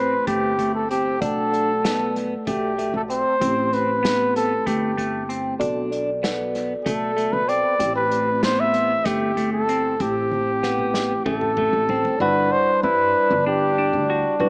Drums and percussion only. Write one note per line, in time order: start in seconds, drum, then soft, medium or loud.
0.27 kick medium
0.27 closed hi-hat medium
0.59 kick medium
0.59 closed hi-hat soft
0.91 closed hi-hat medium
1.22 kick loud
1.22 closed hi-hat medium
1.54 closed hi-hat soft
1.85 snare medium
1.85 closed hi-hat medium
2.16 closed hi-hat soft
2.47 kick loud
2.47 closed hi-hat medium
2.79 closed hi-hat medium
3.10 closed hi-hat medium
3.41 kick medium
3.41 closed hi-hat medium
3.73 closed hi-hat medium
4.05 snare medium
4.05 closed hi-hat medium
4.36 closed hi-hat medium
4.67 kick medium
4.67 closed hi-hat medium
4.98 kick medium
4.98 closed hi-hat soft
5.30 closed hi-hat medium
5.61 kick medium
5.61 closed hi-hat medium
5.92 closed hi-hat medium
6.24 snare medium
6.24 closed hi-hat medium
6.55 closed hi-hat medium
6.86 kick medium
6.86 closed hi-hat medium
7.18 closed hi-hat medium
7.49 closed hi-hat medium
7.80 kick medium
7.80 closed hi-hat medium
8.11 closed hi-hat medium
8.43 snare medium
8.43 closed hi-hat medium
8.74 closed hi-hat medium
9.05 kick medium
9.05 snare soft
9.05 closed hi-hat medium
9.37 kick medium
9.37 closed hi-hat medium
9.69 closed hi-hat medium
10.00 kick medium
10.00 closed hi-hat medium
10.31 high tom soft
10.63 snare medium
10.79 mid tom soft
10.94 snare medium
11.26 kick medium
11.41 mid tom medium
11.57 mid tom medium
11.89 floor tom medium
12.05 floor tom medium